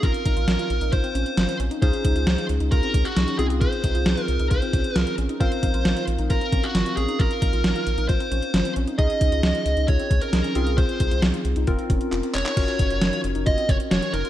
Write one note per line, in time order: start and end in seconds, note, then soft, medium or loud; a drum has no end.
0.00 0.13 A#1 loud
0.00 1.78 C4 medium
0.00 0.21 F4 medium
0.00 1.78 A#4 medium
0.00 0.93 A#4 medium
0.00 1.78 F5 medium
0.00 kick loud
0.00 closed hi-hat medium
0.14 closed hi-hat medium
0.26 0.35 A#1 loud
0.26 0.35 D#4 medium
0.26 kick medium
0.26 closed hi-hat medium
0.37 0.46 A#1 loud
0.37 0.46 F4 medium
0.37 closed hi-hat medium
0.48 0.57 A#1 loud
0.48 0.57 D#4 medium
0.48 snare loud
0.48 closed hi-hat medium
0.59 0.77 F4 medium
0.59 closed hi-hat medium
0.70 0.80 A#1 loud
0.70 closed hi-hat medium
0.81 0.91 A#1 medium
0.81 0.91 D#4 medium
0.81 closed hi-hat medium
0.93 1.02 A#1 loud
0.93 1.02 F4 medium
0.93 1.56 C5 loud
0.93 kick medium
0.93 closed hi-hat medium
1.04 1.13 C4 medium
1.04 closed hi-hat soft
1.15 1.25 A#1 medium
1.15 1.33 C#4 medium
1.15 closed hi-hat medium
1.26 closed hi-hat medium
1.37 1.47 G#1 loud
1.37 1.46 F4 medium
1.37 snare loud
1.37 closed hi-hat medium
1.49 1.58 C4 medium
1.49 closed hi-hat medium
1.60 1.69 A#1 medium
1.60 1.69 C#4 medium
1.60 closed hi-hat medium
1.71 1.80 D#4 medium
1.71 closed hi-hat medium
1.82 1.92 C#2 loud
1.82 3.36 C#4 medium
1.82 3.36 D#4 medium
1.82 2.00 F4 medium
1.82 3.36 G#4 medium
1.82 2.45 C5 loud
1.82 kick loud
1.82 closed hi-hat medium
1.93 closed hi-hat medium
2.05 2.14 C#2 loud
2.05 2.14 D#4 medium
2.05 kick medium
2.05 closed hi-hat medium
2.16 2.25 C#2 medium
2.16 2.25 F4 medium
2.16 closed hi-hat medium
2.27 2.37 C#2 loud
2.27 2.36 D#4 medium
2.27 snare loud
2.27 closed hi-hat medium
2.38 2.56 F4 medium
2.38 closed hi-hat medium
2.49 2.59 C#2 loud
2.49 closed hi-hat medium
2.60 2.70 C#2 medium
2.60 2.70 D#4 medium
2.60 closed hi-hat medium
2.72 2.82 C#2 loud
2.72 2.81 F4 medium
2.72 3.06 A#4 loud
2.72 kick loud
2.72 closed hi-hat medium
2.83 2.92 C4 medium
2.83 closed hi-hat soft
2.94 3.04 C#2 medium
2.94 3.12 C#4 medium
2.94 kick medium
2.94 closed hi-hat medium
3.05 3.38 F#4 medium
3.05 closed hi-hat medium
3.16 3.26 C2 loud
3.16 3.26 D#4 medium
3.16 snare loud
3.16 closed hi-hat medium
3.28 3.37 C#4 medium
3.28 closed hi-hat medium
3.39 3.68 C2 medium
3.39 5.37 C4 medium
3.39 3.48 D#4 medium
3.39 5.36 F4 medium
3.39 3.45 G#4 medium
3.39 5.37 G#4 medium
3.39 closed hi-hat medium
3.50 3.59 F4 medium
3.50 closed hi-hat medium
3.61 3.79 F4 medium
3.61 4.22 C5 loud
3.61 kick loud
3.61 closed hi-hat medium
3.73 closed hi-hat soft
3.84 3.93 C2 loud
3.84 3.93 D#4 medium
3.84 kick medium
3.84 closed hi-hat medium
3.95 4.04 C2 loud
3.95 4.04 F4 medium
3.95 closed hi-hat medium
4.06 4.16 C2 loud
4.06 4.15 D#4 medium
4.06 snare loud
4.06 closed hi-hat medium
4.17 4.35 F4 medium
4.17 closed hi-hat medium
4.22 4.47 A#4 loud
4.28 4.38 C2 medium
4.28 closed hi-hat medium
4.39 4.49 C2 loud
4.39 4.49 D#4 medium
4.39 closed hi-hat medium
4.50 4.61 C2 loud
4.50 4.60 F4 medium
4.50 4.98 C5 medium
4.50 kick medium
4.50 closed hi-hat medium
4.62 4.71 C4 medium
4.62 closed hi-hat soft
4.73 4.83 C2 medium
4.73 4.91 C#4 medium
4.73 kick medium
4.73 closed hi-hat medium
4.84 closed hi-hat medium
4.96 5.05 C2 loud
4.96 5.05 F4 medium
4.96 5.14 A#4 medium
4.96 snare loud
4.96 closed hi-hat medium
5.07 5.16 C4 medium
5.07 closed hi-hat medium
5.18 5.28 A#1 medium
5.18 5.27 C#4 medium
5.18 closed hi-hat medium
5.29 5.38 D#4 medium
5.29 closed hi-hat medium
5.40 5.50 A#1 loud
5.40 8.95 C4 medium
5.40 5.59 F4 medium
5.40 8.95 A#4 medium
5.40 6.04 C5 loud
5.40 8.95 F5 medium
5.40 kick loud
5.40 closed hi-hat medium
5.52 closed hi-hat medium
5.63 5.73 A#1 loud
5.63 5.72 D#4 medium
5.63 kick medium
5.63 closed hi-hat medium
5.74 5.84 A#1 medium
5.74 5.83 F4 medium
5.74 closed hi-hat medium
5.85 5.95 A#1 loud
5.85 5.94 D#4 medium
5.85 snare loud
5.85 closed hi-hat medium
5.97 6.15 F4 medium
5.97 closed hi-hat medium
6.08 6.17 A#1 loud
6.08 closed hi-hat medium
6.19 6.28 A#1 loud
6.19 6.28 D#4 medium
6.19 closed hi-hat medium
6.30 6.40 A#1 medium
6.30 6.39 F4 medium
6.30 6.65 A#4 medium
6.30 kick medium
6.30 closed hi-hat medium
6.41 6.50 C4 medium
6.41 closed hi-hat soft
6.52 6.62 A#1 loud
6.52 6.70 C#4 medium
6.52 kick medium
6.52 closed hi-hat medium
6.63 6.96 F#4 medium
6.63 closed hi-hat medium
6.75 6.84 G#1 loud
6.75 6.84 F4 medium
6.75 snare loud
6.75 closed hi-hat medium
6.86 6.95 C4 medium
6.86 closed hi-hat medium
6.97 7.07 A#1 medium
6.97 7.06 C#4 medium
6.97 7.20 G#4 medium
6.97 closed hi-hat medium
7.08 7.17 D#4 medium
7.08 closed hi-hat soft
7.19 7.29 A#1 loud
7.19 7.38 F4 medium
7.19 8.08 A#4 medium
7.19 kick loud
7.19 closed hi-hat medium
7.31 closed hi-hat medium
7.42 7.52 A#1 loud
7.42 7.51 D#4 medium
7.42 kick medium
7.42 closed hi-hat medium
7.53 7.63 A#1 loud
7.53 7.62 F4 medium
7.53 closed hi-hat medium
7.64 7.74 A#1 loud
7.64 7.73 D#4 medium
7.64 snare loud
7.64 closed hi-hat medium
7.76 7.94 F4 medium
7.76 closed hi-hat medium
7.87 7.96 A#1 loud
7.87 closed hi-hat medium
7.98 8.08 A#1 medium
7.98 8.07 D#4 medium
7.98 closed hi-hat medium
8.08 8.19 A#1 loud
8.08 8.18 F4 medium
8.08 8.72 C5 loud
8.08 kick loud
8.08 closed hi-hat medium
8.20 8.29 C4 medium
8.20 closed hi-hat soft
8.31 8.41 A#1 medium
8.31 8.50 C#4 medium
8.31 closed hi-hat medium
8.43 closed hi-hat medium
8.54 8.63 G#1 loud
8.54 8.63 F4 medium
8.54 snare loud
8.54 closed hi-hat medium
8.65 8.74 C4 medium
8.65 closed hi-hat medium
8.76 8.86 A#1 medium
8.76 8.85 C#4 medium
8.76 closed hi-hat medium
8.87 8.97 D#4 medium
8.87 closed hi-hat medium
8.98 9.08 C#2 loud
8.98 10.52 C#4 medium
8.98 10.52 D#4 medium
8.98 9.17 F4 medium
8.98 10.52 G#4 medium
8.98 9.88 D#5 loud
8.98 kick loud
8.98 closed hi-hat medium
9.10 closed hi-hat medium
9.21 9.31 C#2 loud
9.21 9.30 D#4 medium
9.21 kick medium
9.21 closed hi-hat medium
9.32 9.42 C#2 medium
9.32 9.41 F4 medium
9.32 closed hi-hat medium
9.43 9.53 C#2 loud
9.43 9.53 D#4 medium
9.43 snare loud
9.43 closed hi-hat medium
9.55 9.73 F4 medium
9.55 closed hi-hat medium
9.66 9.75 C#2 loud
9.66 closed hi-hat medium
9.77 9.87 C#2 loud
9.77 9.86 D#4 medium
9.77 closed hi-hat medium
9.88 9.98 C#2 loud
9.88 9.97 F4 medium
9.88 10.20 C#5 medium
9.88 kick medium
9.88 closed hi-hat medium
9.99 10.09 C4 medium
9.99 closed hi-hat soft
10.11 10.20 C#2 medium
10.11 10.29 C#4 medium
10.11 kick loud
10.11 closed hi-hat medium
10.22 10.78 A#4 medium
10.22 closed hi-hat medium
10.33 10.43 C2 loud
10.33 10.42 D#4 medium
10.33 snare loud
10.33 closed hi-hat medium
10.44 10.53 C#4 medium
10.44 closed hi-hat medium
10.55 10.84 C2 medium
10.55 11.65 C4 medium
10.55 10.64 D#4 medium
10.55 11.65 F4 medium
10.55 11.65 G#4 medium
10.55 closed hi-hat medium
10.67 10.76 F4 medium
10.67 closed hi-hat medium
10.78 10.96 F4 loud
10.78 11.20 C5 medium
10.78 kick loud
10.78 closed hi-hat medium
10.89 closed hi-hat medium
11.00 11.10 C2 loud
11.00 11.09 D#4 medium
11.00 kick medium
11.00 closed hi-hat medium
11.11 11.21 C2 loud
11.11 11.20 F4 medium
11.11 closed hi-hat medium
11.22 11.32 C2 medium
11.22 11.32 D#4 medium
11.22 snare loud
11.22 closed hi-hat medium
11.34 11.52 F4 medium
11.34 closed hi-hat soft
11.45 11.55 C2 loud
11.45 closed hi-hat medium
11.56 11.66 C2 loud
11.56 11.65 D#4 medium
11.56 closed hi-hat medium
11.67 11.77 F1 medium
11.67 12.55 C4 medium
11.67 11.76 F4 medium
11.67 12.55 F4 medium
11.67 12.55 A#4 medium
11.67 kick medium
11.67 closed hi-hat medium
11.79 11.88 C4 medium
11.79 closed hi-hat soft
11.90 11.99 F1 medium
11.90 12.08 C#4 medium
11.90 kick medium
11.90 closed hi-hat medium
12.01 closed hi-hat medium
12.12 12.22 F1 loud
12.12 12.21 F4 medium
12.12 clap medium
12.12 closed hi-hat medium
12.23 12.32 C4 medium
12.23 closed hi-hat medium
12.34 12.44 F1 medium
12.34 12.44 C#4 medium
12.34 13.20 C#5 loud
12.34 clap medium
12.34 closed hi-hat medium
12.46 12.55 D#4 medium
12.46 clap medium
12.46 closed hi-hat medium
12.57 12.67 F#1 loud
12.57 14.30 C#4 medium
12.57 12.75 F4 medium
12.57 14.30 F#4 medium
12.57 14.30 A#4 medium
12.57 kick loud
12.57 closed hi-hat medium
12.57 crash medium
12.68 closed hi-hat medium
12.79 12.89 F#1 loud
12.79 12.88 D#4 medium
12.79 kick medium
12.79 closed hi-hat medium
12.90 13.00 F#1 loud
12.90 13.00 F4 medium
12.90 closed hi-hat medium
13.02 13.11 F#1 loud
13.02 13.11 D#4 medium
13.02 snare loud
13.02 closed hi-hat medium
13.13 13.31 F4 medium
13.13 closed hi-hat medium
13.24 13.34 F#1 loud
13.24 closed hi-hat medium
13.35 13.45 F#1 medium
13.35 13.44 D#4 medium
13.35 closed hi-hat medium
13.46 13.56 F#1 medium
13.46 13.55 F4 medium
13.46 13.70 D#5 loud
13.46 kick medium
13.46 closed hi-hat medium
13.58 13.67 C4 medium
13.58 closed hi-hat soft
13.69 13.78 F#1 medium
13.69 13.87 C#4 medium
13.69 13.75 C#5 loud
13.69 kick loud
13.69 closed hi-hat medium
13.80 closed hi-hat medium
13.91 14.01 F1 medium
13.91 14.00 F#4 medium
13.91 14.13 C#5 medium
13.91 snare loud
13.91 closed hi-hat medium
14.02 14.11 C#4 medium
14.02 closed hi-hat medium
14.13 14.23 F#1 medium
14.13 14.23 D#4 medium
14.13 14.30 A#4 medium
14.13 closed hi-hat medium
14.25 14.30 F4 medium
14.25 closed hi-hat medium